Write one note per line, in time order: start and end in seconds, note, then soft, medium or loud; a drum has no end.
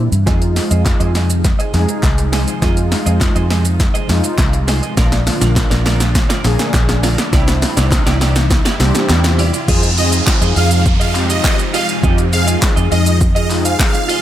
0.00 0.11 A#2 medium
0.00 0.25 C3 medium
0.00 0.25 E3 medium
0.00 0.25 G3 medium
0.00 0.23 D4 medium
0.00 0.25 E4 medium
0.12 0.25 G2 medium
0.12 closed hi-hat medium
0.12 shaker medium
0.26 0.58 F2 loud
0.26 4.94 C3 medium
0.26 4.94 F3 medium
0.26 1.12 G#3 medium
0.26 4.94 G#3 medium
0.26 1.13 D#4 medium
0.26 4.94 D#4 medium
0.26 4.94 F4 medium
0.26 1.13 F4 medium
0.26 0.40 G#4 medium
0.26 0.41 C5 medium
0.26 0.40 D#5 medium
0.26 kick loud
0.26 snare medium
0.26 closed hi-hat medium
0.26 riser medium
0.26 shaker medium
0.41 muted clean electric guitar stroke medium
0.41 closed hi-hat medium
0.41 shaker medium
0.56 muted clean electric guitar stroke soft
0.56 snare medium
0.56 open hi-hat medium
0.56 shaker medium
0.71 0.92 F2 medium
0.71 0.83 G#4 soft
0.71 0.82 C5 medium
0.71 0.82 D#5 medium
0.71 closed hi-hat medium
0.71 shaker medium
0.85 muted clean electric guitar stroke soft
0.85 kick loud
0.85 snare medium
0.85 clap medium
0.85 closed hi-hat medium
0.85 shaker medium
1.00 1.52 F2 medium
1.00 1.12 G#4 medium
1.00 1.12 C5 medium
1.00 1.11 D#5 medium
1.00 closed hi-hat medium
1.00 shaker medium
1.15 1.29 G#4 medium
1.15 1.29 C5 medium
1.15 1.28 D#5 medium
1.15 snare medium
1.15 open hi-hat medium
1.15 shaker soft
1.30 muted clean electric guitar stroke soft
1.30 closed hi-hat medium
1.30 shaker medium
1.44 muted clean electric guitar stroke soft
1.44 kick loud
1.44 snare medium
1.44 closed hi-hat medium
1.44 shaker medium
1.59 1.73 G#4 medium
1.59 1.73 C5 medium
1.59 1.73 D#5 medium
1.59 closed hi-hat medium
1.59 shaker medium
1.74 1.84 F2 loud
1.74 2.38 G#3 medium
1.74 2.38 D#4 medium
1.74 2.38 G#4 loud
1.74 muted clean electric guitar stroke soft
1.74 snare medium
1.74 open hi-hat medium
1.74 shaker soft
1.88 muted clean electric guitar stroke soft
1.88 closed hi-hat medium
1.88 shaker medium
2.03 2.44 C2 loud
2.03 muted clean electric guitar stroke soft
2.03 kick loud
2.03 snare medium
2.03 clap loud
2.03 closed hi-hat medium
2.03 shaker medium
2.18 muted clean electric guitar stroke soft
2.18 closed hi-hat medium
2.18 shaker medium
2.32 2.46 G#4 medium
2.32 2.47 C5 medium
2.32 2.46 D#5 medium
2.32 snare medium
2.32 open hi-hat medium
2.32 shaker medium
2.47 2.59 G#4 medium
2.47 2.59 C5 medium
2.47 2.58 D#5 medium
2.47 closed hi-hat medium
2.47 shaker medium
2.62 2.93 F2 loud
2.62 3.48 G#3 medium
2.62 3.48 D#4 medium
2.62 3.48 F4 medium
2.62 2.76 G#4 medium
2.62 2.76 C5 medium
2.62 2.75 D#5 medium
2.62 kick loud
2.62 snare loud
2.62 closed hi-hat medium
2.62 shaker medium
2.77 muted clean electric guitar stroke medium
2.77 closed hi-hat medium
2.77 shaker medium
2.91 muted clean electric guitar stroke soft
2.91 snare medium
2.91 open hi-hat medium
2.91 shaker medium
3.06 3.27 F2 medium
3.06 3.18 G#4 medium
3.06 3.17 C5 medium
3.06 3.17 D#5 medium
3.06 closed hi-hat medium
3.06 shaker medium
3.21 muted clean electric guitar stroke soft
3.21 kick loud
3.21 snare loud
3.21 clap medium
3.21 closed hi-hat medium
3.21 shaker medium
3.35 3.87 F2 loud
3.35 3.47 G#4 medium
3.35 3.47 C5 medium
3.35 3.46 D#5 medium
3.35 closed hi-hat medium
3.35 shaker medium
3.50 3.64 G#4 medium
3.50 3.65 C5 medium
3.50 3.64 D#5 medium
3.50 snare loud
3.50 open hi-hat medium
3.50 shaker soft
3.65 muted clean electric guitar stroke soft
3.65 closed hi-hat medium
3.65 shaker medium
3.80 muted clean electric guitar stroke soft
3.80 kick loud
3.80 snare loud
3.80 closed hi-hat medium
3.80 shaker medium
3.94 4.08 G#4 medium
3.94 4.09 C5 medium
3.94 4.08 D#5 medium
3.94 closed hi-hat medium
3.94 shaker medium
4.09 4.20 F2 loud
4.09 4.73 G#3 medium
4.09 4.74 D#4 medium
4.09 4.74 F4 loud
4.09 muted clean electric guitar stroke soft
4.09 snare loud
4.09 open hi-hat medium
4.09 shaker soft
4.24 muted clean electric guitar stroke medium
4.24 closed hi-hat medium
4.24 shaker medium
4.38 4.80 C2 loud
4.38 muted clean electric guitar stroke medium
4.38 kick loud
4.38 snare medium
4.38 clap loud
4.38 closed hi-hat medium
4.38 shaker medium
4.53 muted clean electric guitar stroke soft
4.53 closed hi-hat medium
4.53 shaker medium
4.68 4.82 G#4 medium
4.68 4.82 C5 medium
4.68 4.81 D#5 medium
4.68 snare loud
4.68 open hi-hat medium
4.68 shaker medium
4.82 4.94 G#4 medium
4.82 4.94 C5 medium
4.82 4.93 D#5 medium
4.82 closed hi-hat medium
4.82 shaker medium
4.97 5.28 A#1 loud
4.97 7.31 A#2 medium
4.97 7.30 D3 medium
4.97 7.30 F3 medium
4.97 5.83 A#3 medium
4.97 9.64 D4 medium
4.97 5.83 D4 medium
4.97 5.11 F4 medium
4.97 7.30 F4 medium
4.97 5.83 F4 medium
4.97 5.12 A#4 medium
4.97 5.10 D5 medium
4.97 kick loud
4.97 snare loud
4.97 closed hi-hat medium
4.97 shaker medium
5.12 muted clean electric guitar stroke medium
5.12 snare loud
5.12 closed hi-hat medium
5.12 shaker medium
5.27 muted clean electric guitar stroke soft
5.27 snare loud
5.27 open hi-hat medium
5.27 shaker medium
5.41 5.62 A#1 medium
5.41 5.53 F4 medium
5.41 5.53 A#4 medium
5.41 5.52 D5 medium
5.41 snare loud
5.41 closed hi-hat medium
5.41 shaker medium
5.56 muted clean electric guitar stroke soft
5.56 kick loud
5.56 snare loud
5.56 clap medium
5.56 closed hi-hat medium
5.56 shaker medium
5.70 6.23 A#1 loud
5.70 5.82 F4 medium
5.70 5.82 A#4 medium
5.70 5.81 D5 medium
5.70 snare loud
5.70 closed hi-hat medium
5.70 shaker medium
5.85 5.99 F4 medium
5.85 6.00 A#4 medium
5.85 5.99 D5 medium
5.85 snare loud
5.85 open hi-hat medium
5.85 shaker soft
6.00 muted clean electric guitar stroke soft
6.00 snare loud
6.00 closed hi-hat medium
6.00 shaker medium
6.15 muted clean electric guitar stroke soft
6.15 kick loud
6.15 snare loud
6.15 closed hi-hat medium
6.15 shaker medium
6.29 6.43 F4 medium
6.29 6.44 A#4 medium
6.29 6.43 D5 medium
6.29 snare loud
6.29 closed hi-hat medium
6.29 shaker medium
6.44 6.55 A#1 loud
6.44 7.09 A#3 medium
6.44 7.09 D4 medium
6.44 7.09 G#4 loud
6.44 muted clean electric guitar stroke medium
6.44 snare loud
6.44 open hi-hat medium
6.44 shaker soft
6.59 muted clean electric guitar stroke soft
6.59 snare loud
6.59 closed hi-hat medium
6.59 shaker medium
6.74 7.15 A#1 loud
6.74 muted clean electric guitar stroke soft
6.74 kick loud
6.74 snare loud
6.74 clap loud
6.74 closed hi-hat medium
6.74 shaker medium
6.89 muted clean electric guitar stroke soft
6.89 snare loud
6.89 closed hi-hat medium
6.89 shaker medium
7.03 7.17 F4 medium
7.03 7.18 A#4 medium
7.03 7.17 D5 loud
7.03 snare loud
7.03 open hi-hat medium
7.03 shaker medium
7.18 7.30 F4 soft
7.18 7.29 A#4 medium
7.18 7.29 D5 medium
7.18 snare loud
7.18 closed hi-hat medium
7.18 shaker medium
7.32 7.64 C2 loud
7.32 9.66 C3 medium
7.32 9.66 E3 medium
7.32 9.66 G3 medium
7.32 8.18 C4 medium
7.32 8.19 D4 medium
7.32 7.46 E4 medium
7.32 9.66 E4 medium
7.32 8.19 E4 loud
7.32 7.47 G4 medium
7.32 7.46 D5 medium
7.32 kick loud
7.32 snare loud
7.32 closed hi-hat medium
7.32 shaker medium
7.47 muted clean electric guitar stroke medium
7.47 snare loud
7.47 closed hi-hat medium
7.47 shaker medium
7.62 muted clean electric guitar stroke soft
7.62 snare loud
7.62 open hi-hat medium
7.62 shaker medium
7.77 7.98 C2 medium
7.77 7.88 E4 medium
7.77 7.88 G4 medium
7.77 7.88 D5 medium
7.77 snare loud
7.77 closed hi-hat medium
7.77 shaker loud
7.92 kick loud
7.92 snare loud
7.92 clap medium
7.92 closed hi-hat medium
7.92 shaker medium
8.06 8.58 C2 loud
8.06 8.18 E4 medium
8.06 8.17 G4 medium
8.06 8.17 D5 medium
8.06 snare loud
8.06 closed hi-hat medium
8.06 shaker medium
8.21 8.35 E4 medium
8.21 8.35 G4 medium
8.21 8.34 D5 loud
8.21 snare loud
8.21 open hi-hat medium
8.21 shaker soft
8.36 muted clean electric guitar stroke medium
8.36 snare loud
8.36 closed hi-hat medium
8.36 shaker medium
8.50 muted clean electric guitar stroke soft
8.50 kick loud
8.50 snare loud
8.50 closed hi-hat medium
8.50 shaker medium
8.65 8.79 E4 medium
8.65 8.79 G4 medium
8.65 8.79 D5 medium
8.65 snare loud
8.65 closed hi-hat medium
8.65 shaker medium
8.80 8.90 C2 loud
8.80 9.44 C4 medium
8.80 9.44 D4 medium
8.80 9.44 G4 loud
8.80 muted clean electric guitar stroke soft
8.80 snare loud
8.80 open hi-hat medium
8.80 shaker soft
8.94 muted clean electric guitar stroke medium
8.94 snare loud
8.94 closed hi-hat medium
8.94 shaker medium
9.09 9.51 E2 loud
9.09 muted clean electric guitar stroke soft
9.09 snare loud
9.09 clap loud
9.09 closed hi-hat medium
9.09 shaker medium
9.24 muted clean electric guitar stroke medium
9.24 snare loud
9.24 closed hi-hat medium
9.24 shaker medium
9.38 9.52 E4 medium
9.38 9.53 G4 loud
9.38 9.52 D5 loud
9.38 open hi-hat medium
9.38 shaker medium
9.53 9.65 E4 medium
9.53 9.65 G4 medium
9.53 9.64 D5 medium
9.53 closed hi-hat medium
9.53 shaker medium
9.68 10.20 F2 loud
9.68 14.22 C3 medium
9.68 14.22 F3 medium
9.68 14.22 G#3 medium
9.68 9.90 C4 medium
9.68 9.90 D#4 medium
9.68 14.22 D#4 medium
9.68 9.82 F4 medium
9.68 14.22 F4 medium
9.68 9.90 F4 medium
9.68 9.90 G#4 loud
9.68 9.82 G#4 loud
9.68 9.82 D#5 loud
9.68 kick loud
9.68 crash loud
9.68 downlifter medium
9.68 shaker medium
9.83 muted clean electric guitar stroke medium
9.83 closed hi-hat medium
9.83 shaker medium
9.97 10.83 C4 medium
9.97 10.83 D#4 medium
9.97 10.83 F4 medium
9.97 10.83 G#4 medium
9.97 10.10 D#5 medium
9.97 muted clean electric guitar stroke soft
9.97 open hi-hat medium
9.97 shaker medium
10.12 10.24 F4 medium
10.12 10.23 G#4 medium
10.12 10.23 D#5 medium
10.12 closed hi-hat loud
10.12 shaker medium
10.27 muted clean electric guitar stroke soft
10.27 kick loud
10.27 snare loud
10.27 clap medium
10.27 clap loud
10.27 shaker medium
10.41 10.52 F2 loud
10.41 10.53 F4 medium
10.41 10.53 G#4 medium
10.41 10.52 D#5 medium
10.41 closed hi-hat medium
10.41 shaker medium
10.56 11.39 F2 loud
10.56 10.70 F4 medium
10.56 10.70 G#4 loud
10.56 10.70 D#5 loud
10.56 10.81 F5 medium
10.56 open hi-hat medium
10.56 shaker soft
10.71 muted clean electric guitar stroke medium
10.71 closed hi-hat medium
10.71 shaker medium
10.85 muted clean electric guitar stroke soft
10.85 kick loud
10.85 shaker medium
11.00 11.14 F4 medium
11.00 11.14 G#4 medium
11.00 11.14 D#5 medium
11.00 11.13 F5 medium
11.00 closed hi-hat medium
11.00 shaker medium
11.15 11.79 C4 medium
11.15 11.80 D#4 medium
11.15 11.80 F4 medium
11.15 11.80 G4 medium
11.15 muted clean electric guitar stroke soft
11.15 clap medium
11.15 open hi-hat medium
11.15 shaker soft
11.30 11.43 D#5 medium
11.30 muted clean electric guitar stroke soft
11.30 closed hi-hat medium
11.30 shaker medium
11.44 11.57 D#5 medium
11.44 muted clean electric guitar stroke soft
11.44 kick loud
11.44 snare medium
11.44 clap loud
11.44 shaker medium
11.59 muted clean electric guitar stroke soft
11.59 closed hi-hat medium
11.59 shaker medium
11.73 11.88 F4 medium
11.73 11.88 G#4 medium
11.73 11.87 D#5 loud
11.73 11.87 F5 medium
11.73 open hi-hat medium
11.73 shaker medium
11.88 12.00 F4 medium
11.88 12.00 G#4 medium
11.88 11.99 D#5 medium
11.88 closed hi-hat medium
11.88 shaker medium
12.03 12.55 F2 loud
12.03 12.25 C4 medium
12.03 12.25 D#4 medium
12.03 12.17 F4 medium
12.03 12.25 F4 medium
12.03 12.25 G4 loud
12.03 12.18 G#4 loud
12.03 12.17 D#5 loud
12.03 kick loud
12.03 shaker medium
12.18 muted clean electric guitar stroke soft
12.18 closed hi-hat medium
12.18 shaker medium
12.33 13.18 C4 medium
12.33 13.19 D#4 medium
12.33 13.19 F4 medium
12.33 13.19 G#4 medium
12.33 12.46 F5 medium
12.33 muted clean electric guitar stroke soft
12.33 open hi-hat medium
12.33 shaker medium
12.47 12.59 F4 medium
12.47 12.58 G#4 medium
12.47 12.58 D#5 medium
12.47 closed hi-hat loud
12.47 shaker loud
12.62 muted clean electric guitar stroke soft
12.62 kick loud
12.62 snare loud
12.62 clap medium
12.62 clap loud
12.62 shaker medium
12.76 12.87 F2 loud
12.76 12.88 F4 soft
12.76 12.88 G#4 medium
12.76 12.87 D#5 medium
12.76 closed hi-hat medium
12.76 shaker medium
12.91 13.74 F2 medium
12.91 13.05 F4 medium
12.91 13.06 G#4 loud
12.91 13.17 D#5 medium
12.91 13.05 D#5 loud
12.91 open hi-hat medium
12.91 shaker soft
13.06 muted clean electric guitar stroke medium
13.06 closed hi-hat medium
13.06 shaker medium
13.21 muted clean electric guitar stroke soft
13.21 kick loud
13.21 shaker medium
13.35 13.49 F4 medium
13.35 13.49 G#4 medium
13.35 13.49 D#5 medium
13.35 13.48 D#5 loud
13.35 closed hi-hat medium
13.35 shaker medium
13.50 14.15 C4 medium
13.50 14.15 D#4 medium
13.50 14.15 F4 medium
13.50 14.15 G#4 medium
13.50 muted clean electric guitar stroke soft
13.50 clap medium
13.50 open hi-hat medium
13.50 shaker soft
13.64 13.78 F5 medium
13.64 muted clean electric guitar stroke soft
13.64 closed hi-hat medium
13.64 shaker medium
13.79 14.21 F5 loud
13.79 muted clean electric guitar stroke soft
13.79 kick loud
13.79 snare medium
13.79 clap loud
13.79 shaker medium
13.94 muted clean electric guitar stroke soft
13.94 closed hi-hat medium
13.94 shaker medium
14.09 14.22 F4 medium
14.09 14.22 G#4 loud
14.09 14.22 D#5 loud
14.09 open hi-hat medium
14.09 shaker medium